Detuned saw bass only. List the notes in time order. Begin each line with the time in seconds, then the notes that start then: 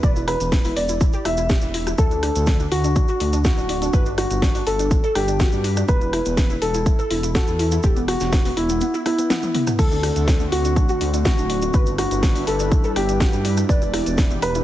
0.03 E1
0.40 E1
0.76 E1
1.25 E1
1.62 E1
1.98 D2
2.35 D2
2.72 D2
3.20 D2
3.57 D1
3.93 G1
4.31 G1
4.67 G1
5.15 G1
5.53 G2
5.88 E1
6.26 E1
6.62 E1
7.11 E1
7.48 E2
7.84 E1
8.21 E1
8.57 E1
9.79 D2
10.16 D2
10.52 D2
11.01 D2
11.38 D1
11.74 G1
12.11 G1
12.47 G1
12.96 G1
13.33 G2
13.69 E1
14.06 E1
14.42 E1